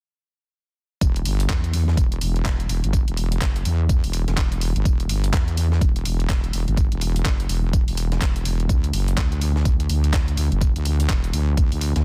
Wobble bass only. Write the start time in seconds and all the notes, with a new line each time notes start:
1.01 E1
1.25 G1
1.49 E2
1.97 E1
2.21 E1
2.69 E1
2.84 G1
3.08 E1
3.41 F#1
3.65 E2
4.04 E1
4.28 E1
4.76 G1
4.85 E1
5.09 G1
5.33 E2
5.81 E1
6.05 E1
6.53 E1
6.68 G1
6.92 E1
7.25 F#1
7.49 E1
7.88 E1
8.21 E1
8.45 E1
8.69 D2
8.93 F#1
9.17 D2
9.65 D2
9.89 D2
10.37 D2
10.52 F#1
10.76 D2
11.09 E1
11.33 D2
11.72 D2
11.96 D2